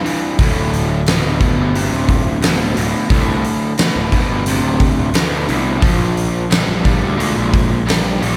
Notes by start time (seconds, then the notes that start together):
0.04 G2 E3, open hi-hat
0.39 D1 D2 A2, kick, open hi-hat
0.73 open hi-hat
1.06 D2 B2, snare, open hi-hat
1.24 D1
1.40 D2 B2, kick, open hi-hat
1.59 G1
1.74 D2 C3, open hi-hat
1.92 D1
2.09 kick, open hi-hat
2.42 D2 B2, snare, open hi-hat
2.75 D1 D2 B2, open hi-hat
3.09 C2 D2 A2, kick, open hi-hat
3.44 open hi-hat
3.78 D2 B2, snare, open hi-hat
3.96 D1
4.12 D2 B2, kick, open hi-hat
4.31 G1
4.46 D2 C3, open hi-hat
4.64 D1
4.80 kick, open hi-hat
4.97 D1
5.14 D2 B2, snare, open hi-hat
5.48 C2 D2 B2, open hi-hat
5.81 A#1 A#2 F3, kick, open hi-hat
6.17 open hi-hat
6.51 A#2 G3, snare, open hi-hat
6.69 A#1
6.84 A#2 G3, kick, open hi-hat
7.02 D2
7.17 A#2 G#3, open hi-hat
7.38 A#1
7.54 kick, open hi-hat
7.87 A#2 G3, snare, open hi-hat
8.20 A#1 A#2 G3, open hi-hat